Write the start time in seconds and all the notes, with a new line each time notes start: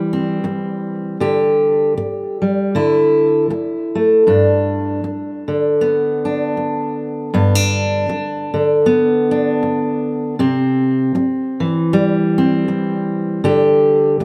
Already playing: E3 G3 C4
0.13 C4
0.44 muted steel-string acoustic guitar stroke
1.20 D3 G4
1.98 muted steel-string acoustic guitar stroke
2.42 G3
2.75 D3 E4
3.50 muted steel-string acoustic guitar stroke
3.95 A3
4.27 G2 D4
5.04 muted steel-string acoustic guitar stroke
5.48 D3
5.81 B3
6.25 D4
6.57 muted steel-string acoustic guitar stroke
7.34 G2 B3
7.55 D4
8.09 muted steel-string acoustic guitar stroke
8.54 D3
8.86 B3
9.31 D4
9.63 muted steel-string acoustic guitar stroke
10.39 C3 C4
11.15 muted steel-string acoustic guitar stroke
11.60 E3
11.93 G3
12.38 C4
12.68 muted steel-string acoustic guitar stroke
13.44 D3 G4
14.20 muted steel-string acoustic guitar stroke